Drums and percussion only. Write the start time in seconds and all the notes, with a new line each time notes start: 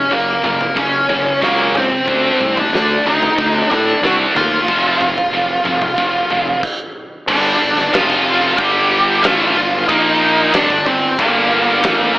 0.44 mid tom
0.61 floor tom, mid tom
0.77 kick
1.09 floor tom
1.42 kick, snare
1.75 floor tom, mid tom
2.08 kick, floor tom
2.41 mid tom
2.57 floor tom
2.75 snare
3.23 floor tom
3.38 kick
3.71 floor tom
4.05 snare
4.36 floor tom, mid tom
4.68 kick, floor tom
5.01 kick, mid tom
5.18 floor tom
5.65 mid tom
5.82 floor tom, mid tom
5.98 kick
6.30 floor tom
6.63 kick, crash
7.28 kick, crash
7.79 snare
7.94 snare, ride bell
8.10 kick, snare
8.58 kick, ride bell
9.24 snare, ride bell
9.89 kick, ride bell
10.54 snare, ride bell
10.70 kick
10.86 kick
11.19 kick, ride bell
11.84 snare, ride bell